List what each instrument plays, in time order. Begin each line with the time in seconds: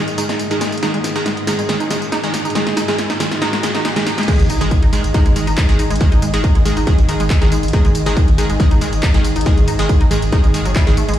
Already playing: synth drone G#2 D#3, analog synth pad D#4 G#4 D#5, riser
0.08 closed hi-hat, tambourine
0.18 synth stab D#3 G#3 G#4, synth arpeggio sound D#4, open hi-hat, tambourine
0.29 synth arpeggio sound G#3, snare, closed hi-hat, tambourine
0.39 closed hi-hat, tambourine
0.51 synth stab D#3 G#3 G#4, synth arpeggio sound D#4, closed hi-hat, tambourine
0.61 synth arpeggio sound G#3, snare, open hi-hat, tambourine
0.72 closed hi-hat, tambourine
0.78 closed hi-hat
0.83 synth stab D#3 G#3 G#4, synth arpeggio sound D#4, snare, closed hi-hat, tambourine
0.94 synth arpeggio sound G#3, closed hi-hat
1.04 snare, open hi-hat, tambourine
1.16 synth stab D#3 G#3 G#4, synth arpeggio sound D#4, closed hi-hat, tambourine
1.26 synth arpeggio sound G#3, snare, closed hi-hat, tambourine
1.37 closed hi-hat
1.47 synth stab D#3 G#3 G#4, synth arpeggio sound D#4, snare, open hi-hat, tambourine
1.59 synth arpeggio sound G#3, closed hi-hat, tambourine
1.69 synth stab D#3 G#3 G#4, snare, closed hi-hat, tambourine
1.80 synth arpeggio sound D#4, closed hi-hat, tambourine
1.90 synth stab D#3 G#3 G#4, synth arpeggio sound G#3, snare, open hi-hat, tambourine
2.02 closed hi-hat, tambourine
2.12 synth arpeggio sound D#4, snare, closed hi-hat, tambourine
2.24 synth stab D#3 G#3 G#4, synth arpeggio sound G#3, closed hi-hat, tambourine
2.34 snare, open hi-hat, tambourine
2.45 synth arpeggio sound D#4, closed hi-hat, tambourine
2.50 closed hi-hat
2.55 synth stab D#3 G#3 G#4, synth arpeggio sound G#3, snare, closed hi-hat, tambourine
2.67 snare, closed hi-hat
2.77 synth arpeggio sound D#4, snare, open hi-hat, tambourine
2.88 synth stab D#3 G#3 G#4, synth arpeggio sound G#3, snare, closed hi-hat, tambourine
2.99 snare, closed hi-hat, tambourine
3.10 synth arpeggio sound D#4, snare, closed hi-hat, tambourine
3.20 synth stab D#3 G#3 G#4, synth arpeggio sound G#3, snare, open hi-hat, tambourine
3.31 snare, closed hi-hat, tambourine
3.42 synth stab D#3 G#3 G#4, synth arpeggio sound D#4, snare, closed hi-hat, tambourine
3.53 synth arpeggio sound G#3, snare, closed hi-hat, tambourine
3.63 synth stab D#3 G#3 G#4, snare, open hi-hat, tambourine
3.75 synth arpeggio sound D#4, snare, closed hi-hat, tambourine
3.85 synth arpeggio sound G#3, snare, closed hi-hat, tambourine
3.96 synth stab D#3 G#3 G#4, snare, closed hi-hat, tambourine
4.06 synth arpeggio sound D#4, snare, open hi-hat, tambourine
4.18 synth arpeggio sound G#3, snare, closed hi-hat, tambourine
4.23 closed hi-hat
4.28 synth drone G#2 D#3, synth stab D#3 G#3 G#4, synth arpeggio sound G#3, analog synth pad D#4, kick, closed hi-hat, crash, ride, tambourine, impact
4.39 sub bass G#1, analog synth pad D#5, closed hi-hat, ride, tambourine
4.50 sub bass G#1, synth arpeggio sound D#4, open hi-hat, ride, tambourine
4.61 sub bass G#1, synth stab D#3 G#3 G#4, synth arpeggio sound G#3, analog synth pad G#4, closed hi-hat, ride, tambourine
4.71 kick, closed hi-hat, ride, tambourine
4.83 sub bass G#1, synth arpeggio sound D#4, closed hi-hat, ride
4.93 synth stab D#3 G#3 G#4, synth arpeggio sound G#3, open hi-hat, ride, tambourine
5.04 sub bass G#1, closed hi-hat, ride, tambourine
5.14 synth stab D#3 G#3 G#4, synth arpeggio sound D#4, kick, closed hi-hat, ride, tambourine
5.26 sub bass G#1, synth arpeggio sound G#3, closed hi-hat, ride, tambourine
5.36 sub bass G#1, synth stab D#3 G#3 G#4, open hi-hat, ride, tambourine
5.47 sub bass G#1, synth arpeggio sound D#4, closed hi-hat, ride, tambourine
5.57 synth arpeggio sound G#3, kick, clap, closed hi-hat, ride, tambourine
5.69 sub bass G#1, synth stab D#3 G#3 G#4, closed hi-hat, ride, tambourine
5.79 synth arpeggio sound D#4, open hi-hat, ride, tambourine
5.90 sub bass G#1, synth arpeggio sound G#3, closed hi-hat, ride, tambourine
5.96 closed hi-hat
6.01 synth stab D#3 G#3 G#4, kick, closed hi-hat, ride, tambourine
6.12 sub bass G#1, synth arpeggio sound D#4, closed hi-hat, ride, tambourine
6.22 sub bass G#1, synth arpeggio sound G#3, open hi-hat, ride, tambourine
6.34 sub bass G#1, synth stab D#3 G#3 G#4, closed hi-hat, ride, tambourine
6.44 synth arpeggio sound D#4, kick, closed hi-hat, ride, tambourine
6.55 sub bass G#1, synth arpeggio sound G#3, closed hi-hat, ride
6.65 synth stab D#3 G#3 G#4, open hi-hat, ride, tambourine
6.77 sub bass G#1, synth arpeggio sound D#4, closed hi-hat, ride, tambourine
6.87 synth stab D#3 G#3 G#4, synth arpeggio sound G#3, kick, closed hi-hat, ride, tambourine
6.98 sub bass G#1, closed hi-hat, ride, tambourine
7.09 sub bass G#1, synth stab D#3 G#3 G#4, synth arpeggio sound D#4, open hi-hat, ride, tambourine
7.20 sub bass G#1, synth arpeggio sound G#3, closed hi-hat, ride, tambourine
7.30 kick, clap, closed hi-hat, ride, tambourine
7.42 sub bass G#1, synth stab D#3 G#3 G#4, synth arpeggio sound D#4, closed hi-hat, ride, tambourine
7.52 synth arpeggio sound G#3, open hi-hat, ride, tambourine
7.63 sub bass G#1, closed hi-hat, ride, tambourine
7.68 closed hi-hat
7.73 synth stab D#3 G#3 G#4, synth arpeggio sound D#4, kick, ride, tambourine
7.85 sub bass G#1, synth arpeggio sound G#3, closed hi-hat, ride, tambourine
7.95 sub bass G#1, open hi-hat, ride, tambourine
8.06 sub bass G#1, synth stab D#3 G#3 G#4, synth arpeggio sound D#4, closed hi-hat, ride, tambourine
8.17 synth arpeggio sound G#3, kick, closed hi-hat, ride, tambourine
8.28 sub bass G#1, closed hi-hat, ride
8.38 synth stab D#3 G#3 G#4, synth arpeggio sound D#4, open hi-hat, ride, tambourine
8.50 sub bass G#1, synth arpeggio sound G#3, closed hi-hat, ride, tambourine
8.60 synth stab D#3 G#3 G#4, kick, closed hi-hat, ride, tambourine
8.71 sub bass G#1, synth arpeggio sound D#4, closed hi-hat, ride, tambourine
8.81 sub bass G#1, synth stab D#3 G#3 G#4, synth arpeggio sound G#3, open hi-hat, ride, tambourine
8.93 sub bass G#1, closed hi-hat, ride, tambourine
9.03 synth arpeggio sound D#4, kick, clap, closed hi-hat, ride, tambourine
9.14 sub bass G#1, synth stab D#3 G#3 G#4, synth arpeggio sound G#3, closed hi-hat, ride, tambourine
9.24 open hi-hat, ride, tambourine
9.36 sub bass G#1, synth arpeggio sound D#4, closed hi-hat, ride, tambourine
9.41 closed hi-hat
9.46 synth stab D#3 G#3 G#4, synth arpeggio sound G#3, kick, closed hi-hat, ride, tambourine
9.57 sub bass G#1, closed hi-hat, ride, tambourine
9.68 sub bass G#1, synth arpeggio sound D#4, open hi-hat, ride, tambourine
9.79 sub bass G#1, synth stab D#3 G#3 G#4, synth arpeggio sound G#3, closed hi-hat, ride, tambourine
9.89 kick, closed hi-hat, ride, tambourine
10.01 sub bass G#1, synth arpeggio sound D#4, closed hi-hat, ride
10.11 synth stab D#3 G#3 G#4, synth arpeggio sound G#3, open hi-hat, ride, tambourine
10.22 sub bass G#1, closed hi-hat, ride, tambourine
10.32 synth stab D#3 G#3 G#4, synth arpeggio sound D#4, kick, closed hi-hat, ride, tambourine
10.44 sub bass G#1, synth arpeggio sound G#3, closed hi-hat, ride, tambourine
10.54 sub bass G#1, synth stab D#3 G#3 G#4, open hi-hat, ride, tambourine
10.65 sub bass G#1, synth arpeggio sound F#3, closed hi-hat, ride, tambourine
10.76 synth arpeggio sound E4, kick, clap, closed hi-hat, ride, tambourine
10.87 sub bass G#1, synth stab D#3 G#3 G#4, closed hi-hat, ride, tambourine
10.97 synth arpeggio sound A3, open hi-hat, ride, tambourine
11.09 sub bass G#1, synth arpeggio sound G#3, closed hi-hat, ride, tambourine
11.14 closed hi-hat